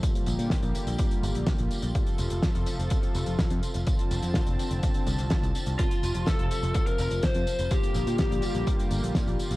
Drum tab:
HH |xxxxxxxxxxxxxxxx|xxxxxxxxxxxxxxxx|xxxxxxxxxxxxxxxx|xxxxxxxxxxxxxxxx|
TB |xxxxxxxxxxxxxxxx|xxxxxxxxxxxxxxxx|xxxxxxxxxxxxxxxx|xxxxxxxxxxxxxxxx|
SD |----o-------o---|----o-------o---|----o-------o---|----o-------o---|
BD |o---o---o---o---|o---o---o---o---|o---o---o---o---|o---o---o---o---|

HH |xxxxxxxxxxxxxxxx|
TB |xxxxxxxxxxxxxxxx|
SD |----o-------o---|
BD |o---o---o---o---|